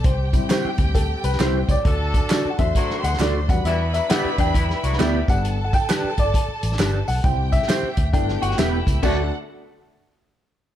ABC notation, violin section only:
X:1
M:4/4
L:1/8
Q:"Swing" 1/4=134
K:Dmix
V:1 name="Violin section"
[Gg]8 | [Aa]3 [cc']4 [Bb]- | [Bb]6- [Bb] [Aa]- | [Aa]8 |
[Gg]4 [Gg]4 | [DAf] z6 z |]